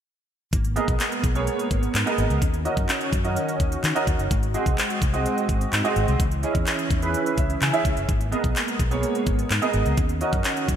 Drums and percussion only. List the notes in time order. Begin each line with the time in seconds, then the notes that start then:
0.53 kick, closed hi-hat
0.65 closed hi-hat
0.76 closed hi-hat
0.88 kick, closed hi-hat
1.00 clap, closed hi-hat
1.12 closed hi-hat
1.24 kick, closed hi-hat
1.35 closed hi-hat
1.47 closed hi-hat
1.59 closed hi-hat
1.71 kick, closed hi-hat
1.83 closed hi-hat
1.95 clap, closed hi-hat
2.07 closed hi-hat
2.18 closed hi-hat
2.30 closed hi-hat
2.42 kick, closed hi-hat
2.54 closed hi-hat
2.65 closed hi-hat
2.77 kick, closed hi-hat
2.89 clap, closed hi-hat
3.01 closed hi-hat
3.13 kick, closed hi-hat
3.25 closed hi-hat
3.36 closed hi-hat
3.49 closed hi-hat
3.60 kick, closed hi-hat
3.72 closed hi-hat
3.84 clap, closed hi-hat
3.96 closed hi-hat
4.07 kick, closed hi-hat
4.19 closed hi-hat
4.31 kick, closed hi-hat
4.43 closed hi-hat
4.54 closed hi-hat
4.66 kick, closed hi-hat
4.78 clap, closed hi-hat
4.90 closed hi-hat
5.02 kick, closed hi-hat
5.14 closed hi-hat
5.26 closed hi-hat
5.38 closed hi-hat
5.49 kick, closed hi-hat
5.61 closed hi-hat
5.73 clap, closed hi-hat
5.85 closed hi-hat
5.96 closed hi-hat
6.08 closed hi-hat
6.20 kick, closed hi-hat
6.31 closed hi-hat
6.43 closed hi-hat
6.55 kick, closed hi-hat
6.67 clap, closed hi-hat
6.79 closed hi-hat
6.91 kick, closed hi-hat
7.02 closed hi-hat
7.14 closed hi-hat
7.26 closed hi-hat
7.38 kick, closed hi-hat
7.50 closed hi-hat
7.62 clap, closed hi-hat
7.74 closed hi-hat
7.85 kick, closed hi-hat
7.97 closed hi-hat
8.09 kick, closed hi-hat
8.21 closed hi-hat
8.32 closed hi-hat
8.44 kick, closed hi-hat
8.56 clap, closed hi-hat
8.68 closed hi-hat
8.80 kick, closed hi-hat
8.91 closed hi-hat
9.03 closed hi-hat
9.15 closed hi-hat
9.26 kick, closed hi-hat
9.39 closed hi-hat
9.51 clap, closed hi-hat
9.62 closed hi-hat
9.74 closed hi-hat
9.86 closed hi-hat
9.97 kick, closed hi-hat
10.09 closed hi-hat
10.21 closed hi-hat
10.33 kick, closed hi-hat
10.44 clap, closed hi-hat
10.57 closed hi-hat
10.69 kick, closed hi-hat